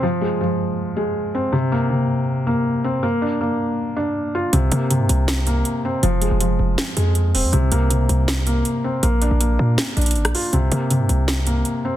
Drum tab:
HH |--------------------------------|--------------------------------|--------------------------------|x---x---x---x---x---x---x-------|
SD |--------------------------------|--------------------------------|--------------------------------|----------------o---------------|

HH |x---x---x-------x---x---x---o---|x---x---x---x---x---x---x-------|x---x---x-------x---xxxxx-x-o---|x---x---x---x---x---x---x-------|
SD |----------------o---------------|----------------o---------------|----------------o---------r-----|----------------o---------------|